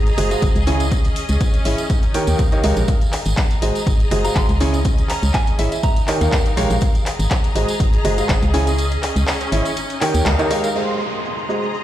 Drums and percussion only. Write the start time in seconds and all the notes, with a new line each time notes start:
0.06 closed hi-hat, tambourine
0.18 open hi-hat
0.31 closed hi-hat, tambourine
0.42 kick, closed hi-hat, tambourine
0.56 closed hi-hat, tambourine
0.67 open hi-hat
0.80 closed hi-hat, tambourine
0.92 kick, closed hi-hat, tambourine
1.05 closed hi-hat, tambourine
1.16 open hi-hat
1.29 closed hi-hat, tambourine
1.41 kick, closed hi-hat, tambourine
1.54 closed hi-hat, tambourine
1.65 open hi-hat
1.78 closed hi-hat, tambourine
1.90 kick, closed hi-hat, tambourine
2.03 closed hi-hat, tambourine
2.14 open hi-hat
2.27 closed hi-hat, tambourine
2.39 kick, closed hi-hat, tambourine
2.52 closed hi-hat, tambourine
2.64 open hi-hat
2.76 closed hi-hat, tambourine
2.88 kick, closed hi-hat, tambourine
3.01 closed hi-hat, tambourine
3.13 clap, open hi-hat
3.26 closed hi-hat, tambourine
3.37 kick, clap, closed hi-hat, tambourine
3.51 closed hi-hat, tambourine
3.62 open hi-hat
3.75 closed hi-hat, tambourine
3.87 kick, closed hi-hat, tambourine
4.00 closed hi-hat, tambourine
4.11 open hi-hat
4.25 closed hi-hat, tambourine
4.36 kick, clap, closed hi-hat
4.49 closed hi-hat, tambourine
4.60 open hi-hat
4.74 closed hi-hat, tambourine
4.85 kick, closed hi-hat, tambourine
4.98 closed hi-hat, tambourine
5.09 clap, open hi-hat
5.23 closed hi-hat, tambourine
5.34 kick, clap, closed hi-hat, tambourine
5.47 closed hi-hat, tambourine
5.59 open hi-hat
5.72 closed hi-hat, tambourine
5.83 kick, closed hi-hat, tambourine
5.96 closed hi-hat, tambourine
6.08 clap, open hi-hat
6.21 closed hi-hat, tambourine
6.32 kick, clap, closed hi-hat, tambourine
6.46 closed hi-hat, tambourine
6.57 open hi-hat
6.70 closed hi-hat, tambourine
6.81 kick, closed hi-hat, tambourine
6.95 closed hi-hat, tambourine
7.06 clap, open hi-hat
7.19 closed hi-hat, tambourine
7.31 kick, clap, closed hi-hat, tambourine
7.44 closed hi-hat, tambourine
7.56 open hi-hat
7.68 closed hi-hat, tambourine
7.80 kick, closed hi-hat, tambourine
7.93 closed hi-hat, tambourine
8.05 open hi-hat
8.18 closed hi-hat, tambourine
8.29 kick, clap, closed hi-hat, tambourine
8.43 closed hi-hat, tambourine
8.54 open hi-hat
8.67 closed hi-hat, tambourine
8.79 closed hi-hat, tambourine
8.91 closed hi-hat, tambourine
9.03 clap, open hi-hat
9.16 closed hi-hat, tambourine
9.27 clap, open hi-hat, tambourine
9.41 closed hi-hat, tambourine
9.52 open hi-hat
9.65 closed hi-hat, tambourine
9.77 closed hi-hat, tambourine
9.90 closed hi-hat, tambourine
10.01 clap, open hi-hat
10.14 closed hi-hat, tambourine
10.26 clap, closed hi-hat, tambourine
10.39 closed hi-hat, tambourine
10.51 open hi-hat
10.64 closed hi-hat, tambourine
10.76 shaker
11.01 shaker
11.14 shaker
11.25 shaker
11.38 shaker
11.50 shaker
11.63 shaker
11.74 shaker